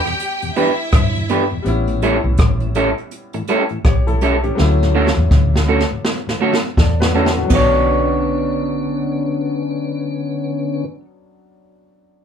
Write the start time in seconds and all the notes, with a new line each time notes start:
Already playing: G3 B3 D4 G4 G5
0.05 E2 B2, cross-stick
0.19 closed hi-hat
0.42 E2 B2, closed hi-hat
0.56 E3 G3 B3 D4 E4 G4 B4 E5, closed hi-hat
0.93 G2, kick, cross-stick, closed hi-hat
1.15 E2 B2, closed hi-hat
1.29 E3 G3 B3 D4 G4 B4, closed hi-hat
1.52 E2 B2
1.62 A1 G3 B3, closed hi-hat
1.66 C#4 E4
1.87 A2 E3, closed hi-hat
2.02 G3 A3 C#4 E4 A4, closed hi-hat
2.24 B1 A2 E3
2.37 A1, kick, cross-stick, closed hi-hat
2.60 A2 E3, closed hi-hat
2.75 G3 A3 C#4 E4 A4, closed hi-hat
2.98 closed hi-hat
3.11 closed hi-hat
3.33 A2 E3, muted clean electric guitar stroke, closed hi-hat
3.47 G3 A3 C#4 E4 A4, closed hi-hat
3.69 A2 E3, closed hi-hat
3.85 B1 G4 C#5, kick, cross-stick, closed hi-hat
4.07 A2 E3 E4 A4, closed hi-hat
4.21 G3 A3 C#4 E4 A4, closed hi-hat
4.43 A2 E3 C#4 G4, closed hi-hat
4.55 F#3 A3 C#4, snare
4.59 D2 E4
4.81 D2 A2, snare
4.95 D3 F#3 A3 C#4 F#4 A4
5.07 snare
5.17 D2 E2 A2
5.31 D2, kick, snare
5.54 D2 A2, snare
5.68 D3 F#3 A3 C#4 F#4 A4
5.80 snare
5.90 D2 A2
6.05 snare
6.27 D2 A2, snare
6.41 D3 F#3 A3 C#4 F#4 A4
6.54 snare
6.77 E2 A4 D5, kick, snare
7.00 D2 A2 F#4 B4, snare
7.14 D3 F#3 A3 C#4 E4 F#4 A4
7.26 snare
7.36 D2 A2 C#4 F#4
7.45 F#3 B3
7.50 B1 D3 B3 C#4 D4 F#4, kick, crash
7.55 D4 C#5